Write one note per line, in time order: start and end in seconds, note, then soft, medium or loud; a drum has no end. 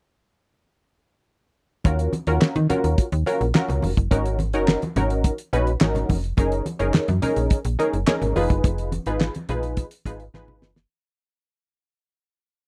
1.84 2.08 D#2 loud
1.84 2.12 C#4 medium
1.84 2.12 F4 medium
1.84 2.12 F#4 medium
1.84 2.12 A#4 medium
1.84 kick loud
1.84 closed hi-hat medium
1.84 muted conga soft
1.99 closed hi-hat soft
2.13 closed hi-hat medium
2.13 high conga medium
2.27 2.39 D#2 loud
2.27 2.54 C#4 medium
2.27 2.55 F4 medium
2.27 2.55 F#4 medium
2.27 2.55 A#4 loud
2.27 closed hi-hat soft
2.42 2.47 D#3 soft
2.42 snare loud
2.42 clap medium
2.42 muted conga soft
2.56 2.67 D#3 loud
2.56 closed hi-hat soft
2.56 high conga medium
2.69 3.06 C#4 medium
2.69 3.06 F4 medium
2.69 3.06 F#4 medium
2.69 3.06 A#4 loud
2.69 closed hi-hat medium
2.69 muted conga soft
2.69 high conga medium
2.69 low conga medium
2.84 2.96 D#2 medium
2.84 closed hi-hat medium
2.98 kick loud
2.98 closed hi-hat medium
3.12 3.24 D#2 loud
3.12 closed hi-hat medium
3.26 3.44 C#4 medium
3.26 3.45 F4 medium
3.26 3.45 F#4 medium
3.26 3.45 A#4 loud
3.26 closed hi-hat medium
3.26 muted conga soft
3.41 3.53 A#1 medium
3.41 closed hi-hat soft
3.55 3.91 C#4 medium
3.55 3.91 F4 medium
3.55 3.91 F#4 medium
3.55 3.91 A#4 loud
3.55 snare loud
3.55 clap medium
3.55 high conga medium
3.69 3.81 C#2 medium
3.69 closed hi-hat medium
3.69 low conga medium
3.82 3.95 F1 medium
3.82 open hi-hat medium
3.82 muted conga soft
3.82 high conga medium
3.97 4.09 F#1 loud
3.97 kick loud
3.97 closed hi-hat medium
4.11 4.55 G#1 loud
4.11 4.38 C#4 medium
4.11 4.38 D#4 medium
4.11 4.39 F#4 medium
4.11 4.39 A#4 loud
4.11 kick loud
4.11 closed hi-hat medium
4.26 closed hi-hat medium
4.39 closed hi-hat medium
4.39 high conga medium
4.53 4.77 F#1 medium
4.53 4.81 C#4 medium
4.53 4.81 D#4 medium
4.53 4.81 F#4 medium
4.53 4.81 A#4 loud
4.53 closed hi-hat medium
4.68 snare loud
4.68 clap medium
4.82 closed hi-hat soft
4.82 high conga medium
4.96 5.31 G#1 medium
4.96 5.32 C#4 medium
4.96 5.33 D#4 medium
4.96 5.33 F#4 medium
4.96 5.33 A#4 medium
4.96 closed hi-hat medium
4.96 muted conga soft
4.96 high conga medium
4.96 low conga medium
5.10 closed hi-hat soft
5.24 kick loud
5.24 closed hi-hat medium
5.24 muted conga soft
5.38 closed hi-hat medium
5.53 5.77 A#1 medium
5.53 5.71 C#4 loud
5.53 5.71 D#4 medium
5.53 5.71 F#4 medium
5.53 5.71 B4 loud
5.53 closed hi-hat medium
5.67 closed hi-hat soft
5.81 6.05 G#1 medium
5.81 6.17 C#4 medium
5.81 6.17 D#4 medium
5.81 6.17 F#4 medium
5.81 6.17 A#4 medium
5.81 snare loud
5.81 clap medium
5.81 muted conga soft
5.81 high conga medium
5.95 closed hi-hat medium
5.95 low conga medium
6.09 6.33 F1 loud
6.09 kick medium
6.09 open hi-hat medium
6.09 high conga medium
6.24 closed hi-hat soft
6.37 6.61 F#1 loud
6.37 6.65 C#4 medium
6.37 6.65 D#4 medium
6.37 6.65 G#4 medium
6.37 6.65 A#4 medium
6.37 kick loud
6.37 closed hi-hat medium
6.37 muted conga soft
6.52 closed hi-hat soft
6.66 closed hi-hat medium
6.66 high conga medium
6.79 6.92 F#1 medium
6.79 7.07 C#4 medium
6.79 7.07 D#4 medium
6.79 7.07 G#4 medium
6.79 7.07 A#4 loud
6.79 closed hi-hat soft
6.94 snare loud
6.94 clap medium
7.08 7.20 F#2 loud
7.08 closed hi-hat soft
7.08 high conga medium
7.22 7.58 C#4 medium
7.22 7.59 D#4 medium
7.22 7.59 G#4 medium
7.22 7.59 A#4 loud
7.22 closed hi-hat medium
7.22 high conga medium
7.22 low conga medium
7.36 7.49 A#1 medium
7.36 closed hi-hat medium
7.50 kick loud
7.50 closed hi-hat medium
7.50 muted conga soft
7.65 7.77 A#1 medium
7.65 closed hi-hat medium
7.79 7.97 C#4 medium
7.79 7.97 D#4 medium
7.79 7.97 G#4 medium
7.79 7.97 A#4 loud
7.79 closed hi-hat medium
7.79 muted conga soft
7.93 8.05 F#1 medium
7.93 closed hi-hat soft
8.07 8.36 C#4 medium
8.07 8.35 D#4 medium
8.07 8.35 G#4 medium
8.07 8.36 A#4 loud
8.07 snare loud
8.07 clap medium
8.07 muted conga soft
8.07 high conga medium
8.22 8.34 G#1 medium
8.22 closed hi-hat medium
8.22 low conga medium
8.36 8.48 F1 loud
8.36 8.92 D#4 medium
8.36 8.92 F4 medium
8.36 8.93 G#4 medium
8.36 8.93 B4 loud
8.36 open hi-hat medium
8.36 muted conga soft
8.36 high conga medium
8.50 8.62 F#1 loud
8.50 kick loud
8.50 closed hi-hat medium
8.64 8.99 F1 loud
8.64 kick loud
8.64 closed hi-hat medium
8.64 muted conga soft
8.78 closed hi-hat soft
8.92 closed hi-hat medium
8.92 high conga medium
9.06 9.30 G#1 medium
9.06 9.34 D#4 medium
9.06 9.34 F4 medium
9.06 9.34 G#4 medium
9.06 9.34 B4 loud
9.06 closed hi-hat soft
9.21 snare loud
9.21 clap medium
9.21 muted conga soft
9.35 closed hi-hat soft
9.35 high conga medium
9.49 9.84 A#1 loud
9.49 9.85 D#4 medium
9.49 9.85 F4 medium
9.49 9.86 G#4 medium
9.49 9.86 B4 loud
9.49 closed hi-hat medium
9.49 high conga soft
9.49 low conga medium
9.63 closed hi-hat medium
9.77 kick loud
9.77 closed hi-hat medium
9.77 muted conga soft
9.91 closed hi-hat medium
10.05 10.29 G#1 loud
10.05 10.24 D#4 medium
10.05 10.24 F4 medium
10.05 10.24 G#4 medium
10.05 10.24 B4 loud
10.05 kick medium
10.05 closed hi-hat medium
10.05 muted conga soft
10.20 closed hi-hat soft
10.34 10.64 G#1 medium
10.34 10.70 D#4 medium
10.34 10.70 F4 medium
10.34 10.70 G#4 medium
10.34 10.71 B4 loud
10.34 snare medium
10.34 high conga medium
10.48 low conga medium
10.62 10.86 F#1 loud
10.62 snare medium
10.62 muted conga soft
10.62 high conga medium
10.76 snare medium